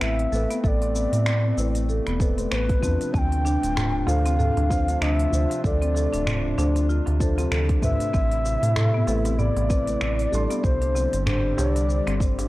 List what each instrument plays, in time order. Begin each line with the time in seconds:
Already playing: ambient pad C3 A3 C4 A4, felt piano A3 B4
0.00 analog synth bass A1, marimba E4, ney E5, finger snap, cabasa
0.19 open hi-hat
0.31 analog synth bass A1, felt piano A3 B4, marimba A4, cabasa
0.50 marimba B3, open hi-hat, cabasa
0.63 analog synth bass A1, marimba A4, ney E5, kick, cabasa
0.68 ney D5
0.82 marimba C4, open hi-hat
0.95 marimba B3, cabasa
1.13 analog synth bass A2, open hi-hat, cabasa
1.26 marimba C4, finger snap, cabasa
1.57 analog synth bass A1, felt piano A3 C4 B4, marimba E4, cabasa
1.75 open hi-hat, cabasa
1.89 marimba A4, cabasa
2.07 analog synth bass E1, marimba B3, finger snap, open hi-hat
2.19 felt piano A3 C4 B4, marimba A4, kick, cabasa
2.37 felt piano A3 B4, marimba C4, open hi-hat, cabasa
2.51 analog synth bass A1, marimba B3, ney B4 C5, finger snap, cabasa
2.69 kick, open hi-hat
2.80 analog synth bass E2, felt piano F3 D4, marimba C4, kick, cabasa
3.01 open hi-hat, cabasa
3.14 analog synth bass D2, marimba C4, ambient pad D4 F4, ney A5, kick, cabasa
3.18 ney G5
3.32 open hi-hat
3.45 marimba D4, darbuka ka, cabasa
3.63 analog synth bass D1, open hi-hat, cabasa
3.76 marimba F4, finger snap, darbuka dum, cabasa
4.07 analog synth bass D2, felt piano F3 D4 C5, marimba A4, ney F5, darbuka tek, cabasa
4.26 marimba C4, open hi-hat, darbuka ka, cabasa
4.39 marimba A4, darbuka dum, cabasa
4.57 analog synth bass D2, marimba D4, open hi-hat, darbuka ka
4.69 felt piano F3 D4 C5, marimba C4, kick, cabasa
4.87 felt piano F3 D4 C5, open hi-hat, cabasa
5.01 analog synth bass D2, marimba D4, ney E5, finger snap, cabasa
5.19 open hi-hat
5.30 analog synth bass D2, felt piano F3 D4 C5, marimba F4, cabasa
5.50 open hi-hat, darbuka ka, cabasa
5.64 analog synth bass D2, marimba A4, ney D5, kick, cabasa
5.82 marimba C4, open hi-hat
5.95 marimba A4, darbuka ka, cabasa
6.13 analog synth bass D1, marimba D4, open hi-hat, cabasa
6.27 marimba C4, finger snap, darbuka dum, cabasa
6.57 analog synth bass D2, felt piano F3 D4 C5, marimba D4, darbuka tek, cabasa
6.76 open hi-hat, darbuka ka, cabasa
6.89 marimba F4, cabasa
7.06 analog synth bass D2, open hi-hat, darbuka ka
7.19 felt piano F3 D4 C5, marimba A4, kick, cabasa
7.37 felt piano F3 D4 C5, marimba C4, open hi-hat, darbuka ka, cabasa
7.51 analog synth bass D2, marimba A4, finger snap, cabasa
7.69 marimba D4, kick, open hi-hat
7.80 analog synth bass D2, felt piano A3 C4 B4, marimba C4, ney E5, kick, darbuka ka, darbuka dum, cabasa
8.00 open hi-hat, cabasa
8.14 analog synth bass A1, ambient pad A3 E4, marimba C4, kick, cabasa
8.31 open hi-hat
8.45 marimba E4, darbuka ka, cabasa
8.63 analog synth bass A2, open hi-hat, cabasa
8.76 marimba A4, finger snap, darbuka dum, cabasa
8.94 marimba B3
9.07 analog synth bass A1, felt piano A3 C4 B4, marimba A4, darbuka tek, cabasa
9.25 marimba C4, open hi-hat, darbuka ka, cabasa
9.32 ney E5
9.39 marimba B3, ney D5, darbuka dum, cabasa
9.56 analog synth bass A1, open hi-hat, darbuka ka
9.68 felt piano A3 C4 B4, marimba C4, kick, cabasa
9.86 felt piano A3 B4, open hi-hat, cabasa
10.01 analog synth bass A1, marimba E4, finger snap, cabasa
10.19 open hi-hat
10.31 analog synth bass A1, felt piano G3 D4, marimba A4, cabasa
10.35 felt piano C6
10.50 marimba B3, open hi-hat, darbuka ka, cabasa
10.63 analog synth bass C2, ambient pad D3 G3 C4 G4, marimba C5, ney C5, kick, cabasa
10.81 marimba D4, open hi-hat
10.95 marimba C4, darbuka ka, cabasa
11.13 analog synth bass G1, open hi-hat, cabasa
11.26 marimba D4, ney C5, finger snap, darbuka dum, cabasa
11.56 analog synth bass C2, felt piano G3 D4 C5, marimba G4, ney C#5, darbuka tek, cabasa
11.70 ney D5
11.76 open hi-hat, darbuka ka, cabasa
11.89 marimba C5, cabasa
12.07 analog synth bass G1, marimba C4, finger snap, open hi-hat, darbuka ka
12.20 marimba C5, kick, cabasa
12.39 marimba D4, open hi-hat, darbuka ka, cabasa